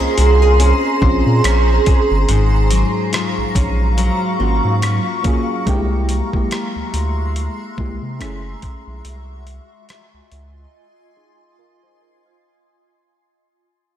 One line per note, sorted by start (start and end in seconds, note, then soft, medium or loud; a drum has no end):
0.00 0.07 C2 soft
0.00 2.31 A#3 medium
0.00 1.01 C4 loud
0.00 0.59 C#4 medium
0.00 1.02 C#4 loud
0.00 1.04 F4 loud
0.00 1.05 G#4 loud
0.00 2.25 G#4 medium
0.00 1.01 C5 medium
0.00 2.25 C5 medium
0.00 8.16 A#5 medium
0.00 2.25 C6 medium
0.17 0.73 C2 medium
0.17 0.42 F#4 medium
0.17 closed hi-hat medium
0.42 1.85 G#4 soft
0.60 1.44 C#4 medium
0.60 closed hi-hat medium
1.01 1.22 A#1 loud
1.01 2.28 C4 medium
1.01 2.29 C#4 medium
1.01 2.30 F4 medium
1.01 2.30 G#4 medium
1.01 2.39 C5 medium
1.01 kick medium
1.26 1.41 A#2 medium
1.44 1.79 A#1 medium
1.44 3.55 C#4 medium
1.44 cross-stick loud
1.44 closed hi-hat medium
1.86 2.74 G#4 medium
1.86 kick loud
1.86 closed hi-hat medium
2.11 2.26 G1 medium
2.28 2.84 G#1 loud
2.28 5.67 G#2 medium
2.28 5.64 F#3 medium
2.28 5.63 F5 medium
2.28 5.64 C#6 medium
2.28 closed hi-hat medium
2.71 3.96 F#3 medium
2.71 closed hi-hat medium
3.13 4.39 F4 medium
3.13 cross-stick loud
3.13 closed hi-hat medium
3.38 3.45 A#1 soft
3.55 4.10 A#1 medium
3.55 5.23 C#4 medium
3.55 kick medium
3.55 closed hi-hat medium
3.97 4.81 F#3 medium
3.97 closed hi-hat medium
4.39 4.60 G#1 medium
4.39 5.20 A#3 medium
4.39 5.21 C#4 medium
4.39 5.76 F4 medium
4.39 5.21 F4 medium
4.39 5.22 F#4 medium
4.65 4.99 G#2 medium
4.82 5.76 F#3 medium
4.82 cross-stick loud
4.82 closed hi-hat medium
5.23 5.64 A#3 medium
5.23 5.76 C#4 medium
5.23 5.65 C#4 medium
5.23 5.66 F4 medium
5.23 5.66 G#4 medium
5.23 kick loud
5.23 closed hi-hat medium
5.66 6.22 C2 loud
5.66 6.29 G#3 loud
5.66 8.18 G#3 medium
5.66 6.30 A#3 medium
5.66 5.75 D4 medium
5.66 6.31 G4 loud
5.66 8.18 E5 medium
5.66 8.18 C6 medium
5.66 kick loud
5.66 closed hi-hat medium
5.75 6.34 E4 medium
6.09 closed hi-hat medium
6.33 7.71 G#3 medium
6.33 7.71 A#3 medium
6.33 7.72 E4 medium
6.33 7.73 G4 medium
6.33 kick medium
6.51 cross-stick loud
6.51 closed hi-hat medium
6.76 6.83 D2 soft
6.94 7.49 D2 medium
6.94 closed hi-hat medium
7.36 closed hi-hat medium
7.77 7.98 C2 medium
7.77 8.20 G#3 medium
7.77 8.20 A#3 medium
7.77 8.21 E4 medium
7.77 8.22 G4 medium
7.77 kick medium
8.03 8.22 C3 loud
8.20 8.55 F#1 medium
8.20 9.01 A3 medium
8.20 9.01 C#4 medium
8.20 9.02 E4 medium
8.20 9.02 G#4 medium
8.20 cross-stick loud
8.20 closed hi-hat medium
8.62 kick loud
8.62 closed hi-hat medium
8.87 9.02 B1 medium
9.05 9.60 C2 loud
9.05 12.40 F4 medium
9.05 12.40 D#5 medium
9.05 12.40 G#5 medium
9.05 12.40 C6 medium
9.05 closed hi-hat medium
9.47 closed hi-hat medium
9.89 cross-stick loud
9.89 closed hi-hat medium
10.14 10.21 C#2 soft
10.32 10.66 C#2 medium
10.32 closed hi-hat medium
11.17 11.57 D#4 soft
11.17 11.57 G#4 medium
11.59 11.82 F4 medium
11.59 11.82 A#4 medium
11.83 12.00 F4 medium
11.83 12.00 C5 medium
12.01 12.25 A#4 medium
12.01 12.24 D#5 medium
12.26 12.66 C5 soft
12.26 12.66 F5 medium